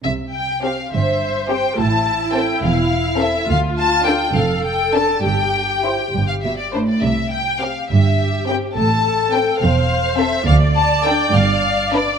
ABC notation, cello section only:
X:1
M:6/8
L:1/8
Q:3/8=69
K:C
V:1 name="Cello section" clef=bass
C,3 G,,3 | A,,3 E,,3 | D,,3 F,,3 | G,,3 G,, B,, A,, |
C,3 G,,3 | A,,3 E,,3 | D,,3 G,,3 |]